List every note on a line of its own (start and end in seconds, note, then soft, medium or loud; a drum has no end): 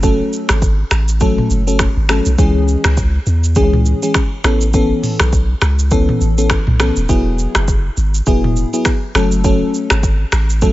0.00 0.22 F#1 loud
0.00 0.58 F#3 medium
0.00 0.58 A3 medium
0.00 0.58 C#4 medium
0.00 0.58 A4 loud
0.00 kick loud
0.00 shaker medium
0.33 shaker soft
0.49 0.84 G#1 loud
0.49 finger snap medium
0.49 cross-stick loud
0.49 shaker medium
0.62 kick loud
0.62 shaker medium
0.91 1.39 A1 loud
0.91 finger snap medium
0.91 cross-stick medium
0.91 shaker medium
1.09 shaker medium
1.20 1.63 F#3 loud
1.20 1.63 A3 medium
1.20 1.63 C#4 medium
1.20 1.63 A4 loud
1.20 kick loud
1.20 shaker medium
1.38 mid tom medium
1.50 1.88 F#1 loud
1.50 shaker medium
1.67 1.84 F#3 medium
1.67 1.85 A3 medium
1.67 1.85 C#4 medium
1.67 1.85 A4 medium
1.67 shaker medium
1.79 finger snap medium
1.79 kick medium
1.79 cross-stick loud
1.79 shaker medium
1.97 2.21 G#1 medium
2.09 2.30 F#3 medium
2.09 2.30 A3 medium
2.09 2.30 C#4 medium
2.09 2.30 A4 medium
2.09 finger snap medium
2.09 cross-stick loud
2.09 shaker medium
2.26 2.36 B1 medium
2.26 shaker medium
2.38 2.76 C#2 loud
2.38 2.93 E3 loud
2.38 2.93 G#3 medium
2.38 2.93 C#4 medium
2.38 2.94 G#4 loud
2.38 kick loud
2.38 shaker medium
2.68 shaker soft
2.84 3.19 C#2 loud
2.84 finger snap medium
2.84 cross-stick loud
2.84 shaker medium
2.97 kick loud
2.97 shaker medium
3.26 3.58 E2 loud
3.26 shaker medium
3.44 shaker medium
3.56 3.94 C#2 loud
3.56 3.98 E3 loud
3.56 3.98 G#3 medium
3.56 3.99 C#4 medium
3.56 3.99 G#4 loud
3.56 kick loud
3.56 shaker medium
3.73 mid tom medium
3.86 shaker medium
4.02 4.20 E3 medium
4.02 4.20 G#3 medium
4.02 4.20 C#4 medium
4.02 4.20 G#4 medium
4.02 shaker medium
4.14 finger snap medium
4.14 kick medium
4.14 cross-stick medium
4.14 shaker medium
4.44 4.92 A1 medium
4.44 4.65 E3 medium
4.44 4.65 B3 medium
4.44 4.65 C#4 medium
4.44 4.65 A4 medium
4.44 finger snap medium
4.44 cross-stick loud
4.44 shaker medium
4.61 shaker medium
4.74 5.29 E3 medium
4.74 5.29 B3 medium
4.74 5.29 C#4 medium
4.74 5.29 A4 loud
4.74 kick loud
4.74 shaker medium
5.03 mid tom medium
5.03 open hi-hat soft
5.03 shaker soft
5.20 5.54 B1 medium
5.20 finger snap medium
5.20 cross-stick loud
5.20 shaker medium
5.33 kick loud
5.33 shaker medium
5.62 6.10 C#2 loud
5.62 finger snap medium
5.62 cross-stick loud
5.62 shaker medium
5.79 shaker medium
5.91 6.34 E3 medium
5.91 6.34 B3 medium
5.91 6.34 C#4 medium
5.91 6.34 A4 loud
5.91 kick loud
5.91 shaker medium
6.09 mid tom medium
6.21 6.59 A1 loud
6.21 shaker medium
6.38 6.55 E3 medium
6.38 6.55 B3 medium
6.38 6.55 C#4 medium
6.38 6.55 A4 medium
6.38 shaker medium
6.50 finger snap medium
6.50 kick medium
6.50 cross-stick loud
6.50 shaker medium
6.67 6.91 B1 loud
6.67 mid tom loud
6.80 7.00 E3 medium
6.80 7.00 B3 medium
6.80 7.00 C#4 medium
6.80 7.00 A4 medium
6.80 finger snap medium
6.80 cross-stick loud
6.80 shaker medium
6.96 7.07 D#1 medium
6.96 shaker medium
7.09 7.47 E1 loud
7.09 7.64 F#3 loud
7.09 7.64 B3 medium
7.09 7.64 E4 medium
7.09 7.64 G#4 loud
7.09 kick loud
7.09 shaker medium
7.39 shaker soft
7.55 7.90 F#1 medium
7.55 finger snap medium
7.55 cross-stick loud
7.55 shaker medium
7.68 kick medium
7.68 shaker medium
7.97 8.21 G#1 medium
7.97 shaker medium
8.15 shaker medium
8.26 8.65 E1 loud
8.26 8.69 F#3 medium
8.26 8.69 B3 medium
8.26 8.69 E4 medium
8.26 8.69 G#4 loud
8.26 kick loud
8.26 shaker medium
8.44 mid tom medium
8.56 shaker medium
8.73 8.90 F#3 medium
8.73 8.90 B3 medium
8.73 8.91 E4 medium
8.73 8.91 G#4 medium
8.73 shaker medium
8.85 finger snap medium
8.85 kick medium
8.85 cross-stick medium
8.85 shaker medium
9.15 9.63 F#1 loud
9.15 9.42 F#3 medium
9.15 9.43 A3 medium
9.15 9.43 C#4 medium
9.15 9.43 A4 loud
9.15 finger snap medium
9.15 cross-stick loud
9.15 shaker medium
9.32 shaker medium
9.44 9.99 F#3 loud
9.44 9.99 A3 medium
9.44 9.99 C#4 medium
9.44 10.00 A4 loud
9.44 kick loud
9.44 shaker medium
9.74 shaker soft
9.90 10.25 G#1 loud
9.90 finger snap medium
9.90 cross-stick loud
9.90 shaker medium
10.03 kick loud
10.03 shaker medium
10.32 10.72 A1 loud
10.32 finger snap medium
10.32 cross-stick medium
10.32 shaker medium
10.50 shaker medium
10.62 10.72 F#3 loud
10.62 10.72 A3 medium
10.62 10.72 C#4 medium
10.62 10.72 A4 loud
10.62 kick loud
10.62 shaker medium